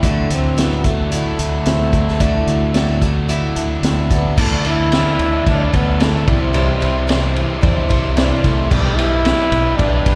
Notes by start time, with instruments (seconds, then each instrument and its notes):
Already playing: tonewheel organ E6
0.03 fingered electric bass D2, steel-string acoustic guitar D3 A3 E4 F#4 A4, overdriven electric guitar D3, trombone A3, grand piano E4 F#4 D5, tonewheel organ D5 F#5, kick, closed hi-hat
0.30 fingered electric bass D2, overdriven electric guitar F#3, trombone C4, closed hi-hat
0.56 overdriven electric guitar F#3, steel-string acoustic guitar A3 E4 F#4 A4, trombone B3, grand piano E4 F#4 D5, snare, closed hi-hat
0.84 overdriven electric guitar A3, trombone A3, kick, closed hi-hat
1.11 steel-string acoustic guitar D3 A3 E4 F#4 A4, grand piano E4 F#4 A4, overdriven electric guitar E4, closed hi-hat
1.37 fingered electric bass D2, overdriven electric guitar D4, steel-string acoustic guitar E4 F#4 A4, closed hi-hat
1.66 fingered electric bass D2, overdriven electric guitar E4, grand piano E4 F#4 C5, snare, closed hi-hat
1.92 overdriven electric guitar D4, steel-string acoustic guitar E4 F#4 A4, kick, closed hi-hat
2.08 snare
2.20 fingered electric bass D2, steel-string acoustic guitar D3 A3 E4 F#4 A4, overdriven electric guitar D3, grand piano E4 F#4 D5, kick, closed hi-hat
2.47 fingered electric bass D2, overdriven electric guitar F#3, closed hi-hat
2.74 overdriven electric guitar F#3, steel-string acoustic guitar A3 E4 F#4 A4, grand piano E4 F#4 D5, snare, closed hi-hat
3.01 overdriven electric guitar A3, steel-string acoustic guitar E4 F#4 A4, kick, closed hi-hat
3.28 steel-string acoustic guitar D3 A3 E4 F#4 A4, grand piano E4 F#4 E5, overdriven electric guitar E4, closed hi-hat
3.55 fingered electric bass D2, overdriven electric guitar D4, steel-string acoustic guitar E4 F#4 A4, grand piano E5, closed hi-hat
3.83 fingered electric bass D2, overdriven electric guitar E4, grand piano E4 F#4 D5 F#5, snare, closed hi-hat
4.10 trombone B3, overdriven electric guitar D4, steel-string acoustic guitar E4 F#4 A4, grand piano A5, kick, closed hi-hat
4.37 fingered electric bass D2, overdriven electric guitar D3 D4 E4 A4, steel-string acoustic guitar D3 E3 A3 D4 E4 A4, trombone A3, grand piano E4 A4 D5, tonewheel organ D5 A5 E6, kick, crash
4.52 overdriven electric guitar D4 E4 A4
4.64 overdriven electric guitar D3 D4 E4, steel-string acoustic guitar A3 D4 E4 A4, trombone E4, ride
4.69 overdriven electric guitar A4
4.92 steel-string acoustic guitar D3 E3 A3 D4 E4 A4, overdriven electric guitar D3 D4 E4, grand piano E4 A4 D5, snare, ride
4.96 overdriven electric guitar A4
5.06 overdriven electric guitar D4 E4 A4
5.19 fingered electric bass D2, muted overdriven electric guitar stroke, ride
5.33 overdriven electric guitar D4 E4 A4
5.46 fingered electric bass D2, steel-string acoustic guitar A3 D4 E4 A4, trombone D4, grand piano E4 A4 D5, kick, ride
5.60 overdriven electric guitar D4 E4 A4
5.73 fingered electric bass D2, overdriven electric guitar D3 D4 E4 A4, steel-string acoustic guitar A3 D4 E4 A4, trombone B3, kick, ride
5.99 overdriven electric guitar D3 D4 E4 A4, steel-string acoustic guitar D3 E3 A3 D4 E4 A4, trombone A3, grand piano E4 A4 D5, snare, ride
6.27 fingered electric bass C2, overdriven electric guitar C3 E3 G3 C4 E4 C5, trombone G3, steel-string acoustic guitar G3 D4 E4 C5, grand piano E4 C5 D5, tonewheel organ C5 E5 D6, kick, ride
6.40 overdriven electric guitar G3 C4 E4 C5
6.53 steel-string acoustic guitar C3 E3 G3 D4 E4 C5, overdriven electric guitar C3 E3 G3 C4 E4 C5, trombone G3, ride
6.68 overdriven electric guitar G3 C4 E4 C5
6.80 fingered electric bass C2, overdriven electric guitar G3 C4 E4 C5, steel-string acoustic guitar G3 D4 E4 C5, ride
7.07 overdriven electric guitar C3 E3 G3 C4 E4 C5, steel-string acoustic guitar C3 E3 G3 D4 E4 C5, grand piano E4 C5 D5, snare, ride
7.20 overdriven electric guitar G3 C4 E4 C5
7.35 muted overdriven electric guitar stroke, ride
7.48 overdriven electric guitar G3 C4 E4 C5
7.61 fingered electric bass E2, steel-string acoustic guitar G3 D4 E4 C5, grand piano E4 C5 D5, kick, ride
7.76 overdriven electric guitar G3 C4 E4 C5
7.89 fingered electric bass C2, overdriven electric guitar G3 C4 E4 C5, steel-string acoustic guitar G3 D4 E4 C5, kick, ride
8.15 overdriven electric guitar C3 E3 G3 C4 E4 C5, steel-string acoustic guitar C3 E3 G3 D4 E4 C5, grand piano E4 C5 D5, snare, ride
8.43 fingered electric bass C2, overdriven electric guitar G3 C4 E4 C5, steel-string acoustic guitar G3 D4 E4 C5, trombone A3, kick, ride
8.58 overdriven electric guitar G3 C4 E4 C5
8.71 fingered electric bass B1, trombone G3, steel-string acoustic guitar B3 D4 G4 B4, overdriven electric guitar B3 D4 G4 B4, grand piano G4 B4 D5, tonewheel organ B4 G5, kick, crash
8.85 overdriven electric guitar D4 G4 B4
8.96 overdriven electric guitar B3 D4, trombone E4, steel-string acoustic guitar G4 B4, ride
9.00 steel-string acoustic guitar D4, overdriven electric guitar G4 B4
9.25 overdriven electric guitar B3 D4 G4 B4, steel-string acoustic guitar B3 D4 G4 B4, grand piano G4 B4 E5, snare, ride
9.38 overdriven electric guitar D4 G4 B4
9.52 fingered electric bass B1, muted overdriven electric guitar stroke, ride
9.66 overdriven electric guitar D4 G4 B4
9.77 fingered electric bass B1, steel-string acoustic guitar B3 D4 G4 B4, trombone D4, grand piano G4 B4 D5, kick, ride
9.92 overdriven electric guitar D4 G4 B4
10.05 fingered electric bass B1, overdriven electric guitar B3 D4 G4 B4, steel-string acoustic guitar D4 G4 B4, kick, ride